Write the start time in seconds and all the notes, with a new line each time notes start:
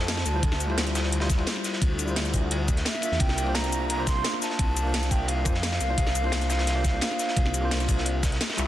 Already playing: F2 A5
0.08 snare, closed hi-hat, ride
0.17 snare, ride
0.26 D2, closed hi-hat, ride, shaker
0.33 G3 E4 F4 C5
0.43 D2, kick, closed hi-hat, ride
0.52 snare
0.60 closed hi-hat, ride, shaker
0.67 G3 E4 F4, ride
0.72 C5
0.78 snare, closed hi-hat, ride
0.86 snare, closed hi-hat, shaker
0.95 snare, closed hi-hat, ride, shaker
1.03 snare
1.12 closed hi-hat, ride
1.20 G3 E4 F4 C5, snare, ride
1.30 kick, snare, closed hi-hat, shaker
1.36 G3 E4 F4, ride
1.41 C5
1.47 snare, closed hi-hat, ride
1.56 snare
1.64 snare, closed hi-hat, ride, shaker
1.73 snare
1.82 D2, kick, closed hi-hat, ride
1.99 closed hi-hat, ride, shaker
2.05 G3 E4 F4, shaker
2.10 C5
2.16 snare, closed hi-hat, ride
2.25 snare, closed hi-hat, shaker
2.34 kick, open hi-hat, ride, shaker
2.51 closed hi-hat, ride
2.68 kick, closed hi-hat, ride, shaker
2.76 snare, closed hi-hat
2.85 E5, snare, closed hi-hat, ride
2.94 snare
3.01 A#3 D4 F4, closed hi-hat, ride, shaker
3.05 E5
3.12 E2, snare
3.20 C2 G5, kick, closed hi-hat, ride
3.29 snare
3.38 closed hi-hat, ride, shaker
3.44 A#3 D4 F4, ride
3.49 C5
3.55 A#5, snare, closed hi-hat, ride
3.64 snare, closed hi-hat, shaker
3.72 closed hi-hat, ride, shaker
3.90 A#5, closed hi-hat, ride
3.97 A#3 D4 F4 C5
4.07 C6, kick, snare, closed hi-hat, ride, shaker
4.13 A#3 D4 F4
4.18 C5
4.24 snare, closed hi-hat, ride
4.33 snare
4.42 A5, snare, closed hi-hat, ride, shaker
4.50 snare
4.59 C2, kick, closed hi-hat, ride
4.77 closed hi-hat, ride, shaker
4.83 A#3 D4 F4
4.88 C5
4.94 snare, closed hi-hat, ride
5.03 snare, closed hi-hat, shaker
5.11 G5, kick, open hi-hat, ride, shaker
5.28 F5, closed hi-hat, ride
5.45 F2 A#3 D4 F4 C5, kick, closed hi-hat, ride, shaker
5.54 snare
5.63 snare, closed hi-hat, ride
5.72 snare, ride
5.80 C2, closed hi-hat, ride, shaker
5.88 A#3 D4 F4 C5
5.98 C2, kick, closed hi-hat, ride
6.07 snare
6.15 closed hi-hat, ride, shaker
6.22 A#3 D4 F4, ride
6.26 C5
6.32 snare, closed hi-hat, ride
6.41 snare, closed hi-hat, shaker
6.50 snare, closed hi-hat, ride, shaker
6.59 snare, ride
6.67 snare, closed hi-hat, ride
6.75 A#3 D4 F4 C5
6.84 kick, snare, closed hi-hat, ride, shaker
6.91 A#3 D4 F4
6.96 C5
7.01 snare, closed hi-hat, ride
7.11 snare
7.19 snare, closed hi-hat, ride, shaker
7.28 snare
7.37 C2, kick, closed hi-hat, ride
7.46 snare
7.54 closed hi-hat, ride, shaker
7.60 A#3 D4 F4
7.65 C5
7.71 snare, closed hi-hat, ride
7.80 snare, closed hi-hat, shaker
7.88 kick, open hi-hat, ride, shaker
7.98 snare
8.05 closed hi-hat, ride
8.23 kick, snare, closed hi-hat, ride, shaker
8.32 snare, closed hi-hat
8.41 snare, closed hi-hat, ride
8.49 snare, ride
8.54 G3 E4, snare, ride
8.58 C2 F4 E5, clap, closed hi-hat, ride, shaker